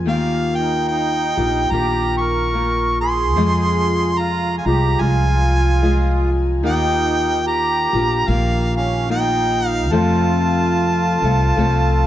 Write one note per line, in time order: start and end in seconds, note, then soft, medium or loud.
0.06 1.33 D#2 medium
0.06 1.36 D#3 medium
0.06 1.37 A#3 medium
0.06 1.37 F4 medium
0.06 1.36 G4 medium
0.06 0.57 F5 medium
0.10 0.53 A#3 medium
0.56 0.89 D#4 medium
0.56 0.88 G5 medium
0.88 1.68 D#4 medium
0.88 1.73 G5 medium
1.37 1.70 A#1 medium
1.37 1.72 A#3 soft
1.37 1.72 F4 soft
1.37 1.71 G4 soft
1.71 3.36 A#1 medium
1.71 2.52 D#3 medium
1.71 2.53 A#3 soft
1.71 2.54 F4 medium
1.71 2.20 G4 medium
1.71 2.55 G4 soft
1.71 2.17 A#5 medium
2.17 2.98 A#4 medium
2.17 2.97 C#6 medium
2.53 3.36 D#3 medium
2.53 3.36 A#3 medium
2.53 3.37 F4 medium
3.01 4.14 G#4 medium
3.01 4.20 C6 loud
3.36 4.66 F2 medium
3.36 4.62 F2 medium
3.36 4.66 C3 medium
3.36 4.67 F3 medium
3.36 4.65 G#3 medium
3.36 4.65 F4 medium
3.36 4.67 G#4 medium
4.18 4.57 F4 medium
4.18 4.57 A#5 medium
4.58 4.65 F4 medium
4.58 4.67 G#5 medium
4.66 4.98 C2 medium
4.66 4.99 F3 soft
4.66 5.00 G#3 soft
4.66 5.00 F4 soft
4.66 5.00 G4 medium
4.66 5.02 A#5 medium
5.00 6.64 C2 medium
5.00 5.82 F3 medium
5.00 5.81 G#3 medium
5.00 6.30 F4 medium
5.00 5.83 F4 medium
5.00 5.83 G#4 medium
5.00 6.30 G#5 medium
5.82 6.63 F3 medium
5.82 6.63 G#3 medium
5.82 6.64 F4 medium
5.82 6.65 G#4 medium
6.63 7.90 D#2 medium
6.63 7.94 D#3 medium
6.63 7.94 A#3 medium
6.63 7.42 D#4 medium
6.63 7.94 F4 medium
6.63 7.92 G4 medium
6.63 7.43 G5 loud
7.47 8.25 G4 medium
7.47 8.30 A#5 loud
7.93 8.26 A#1 medium
7.93 8.27 A#3 soft
7.93 8.28 F4 soft
7.93 8.28 G4 soft
8.27 9.92 A#1 medium
8.27 9.07 D#3 soft
8.27 8.76 A#3 medium
8.27 9.08 A#3 medium
8.27 9.10 F4 medium
8.27 9.10 G4 medium
8.27 8.76 F5 medium
8.76 9.08 C#4 medium
8.76 9.08 F5 medium
9.09 9.92 D#3 medium
9.09 9.92 A#3 medium
9.09 9.88 D#4 medium
9.09 9.92 F4 medium
9.09 9.93 G4 medium
9.09 9.67 G5 medium
9.67 9.94 F5 medium
9.91 11.22 F2 medium
9.91 11.18 F2 medium
9.91 11.22 C3 medium
9.91 11.22 F3 medium
9.91 11.22 A3 medium
9.91 11.22 C4 medium
9.91 12.07 F4 medium
9.91 11.22 A4 medium
9.91 12.07 A5 loud
11.22 11.55 C2 medium
11.22 11.55 F3 soft
11.22 11.56 A3 soft
11.22 11.57 C4 soft
11.22 11.57 A4 medium
11.56 12.07 C2 medium
11.56 12.07 F3 medium
11.56 12.07 A3 medium
11.56 12.07 C4 medium
11.56 12.07 A4 medium